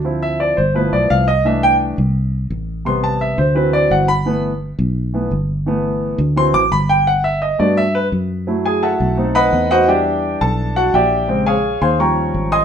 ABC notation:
X:1
M:4/4
L:1/8
Q:1/4=171
K:G
V:1 name="Grand piano"
z e d c B d =f _e | e g z6 | c' a e c B d f b- | b z6 z |
z4 c' d' b g | f e _e d =e B z2 | z [_A_a] [=Aef=a]3 [B^dfb]2 [Fcdf] | [Gdeg]3 [Aa]2 [Ff] [Gdeg]2- |
[Gdeg] [_A_d=f_a]2 [cfac'] [dg_b_d']3 [_eac'_e'] |]
V:2 name="Grand piano"
[=F,CE]3 z [F,A,B,E]3 z | [E,A,D]3 z4 z | [C,G,B,]3 z [E,F,C]3 z | [E,A,B,] z4 [E,A,B,] z2 |
[E,A,B,]3 z [E,F,C] z3 | z3 [A,B,F] z4 | [F,A,E]4 [A,C^D]4 | [E,G,D]8 |
[_D,_A,C] z3 [=F,G,_D]4 |]
V:3 name="Fingered electric bass" clef=bass
D,,3 G,,,2 B,,, C,,2- | C,,3 C,,3 A,,,2- | A,,,3 D,,3 G,,,2- | G,,,3 B,,,3 G,,,2- |
G,,,3 D,,2 A,,, G,,,2- | G,,,3 G,,3 F,,2- | F,,3 B,,,3 E,,2- | E,,3 B,,,3 _B,,,2- |
_B,,,3 _E,,3 _A,,,2 |]